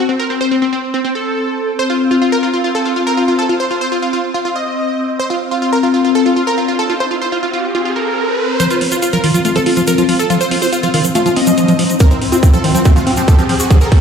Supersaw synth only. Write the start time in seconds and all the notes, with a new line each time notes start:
0.09 C4
0.19 A#4
0.30 C4
0.41 C5
0.51 C4
0.62 C4
0.73 C4
0.94 C4
1.05 C4
1.15 A4
1.79 C5
1.90 F4
2.11 F4
2.22 F4
2.32 A#4
2.43 F4
2.54 F4
2.64 F4
2.75 A4
2.85 F4
2.96 F4
3.07 A#4
3.17 F4
3.28 F4
3.39 A4
3.49 F4
3.60 C5
3.71 F4
3.81 C5
3.92 F4
4.02 F4
4.13 F4
4.34 F4
4.45 F4
4.56 D#5
5.19 C5
5.30 F4
5.51 F4
5.62 F4
5.73 A#4
5.83 F4
5.94 F4
6.05 F4
6.15 A4
6.26 F4
6.36 F4
6.47 A#4
6.58 F4
6.68 F4
6.79 A4
6.90 F4
7.00 C5
7.11 F4
7.22 C5
7.32 F4
7.43 F4
7.53 F4
7.75 F4
7.85 F4
7.96 A#4
8.60 C5
8.71 F4
8.92 F4
9.02 F4
9.13 A#4
9.24 F4
9.34 F4
9.45 F4
9.56 A4
9.66 F4
9.77 F4
9.88 A#4
9.98 F4
10.09 F4
10.19 A4
10.30 F4
10.41 C5
10.51 F4
10.62 C5
10.73 F4
10.83 F4
10.94 F4
11.15 F4
11.26 F4
11.36 D#5
12.00 A#4
12.11 C4
12.32 C4
12.43 C4
12.53 A4
12.64 C4
12.75 C4
12.85 C4
12.96 F4
13.07 C4
13.17 C4
13.28 A4
13.39 C4
13.49 C4
13.60 F#4
13.71 C4
13.81 A#4
13.92 C4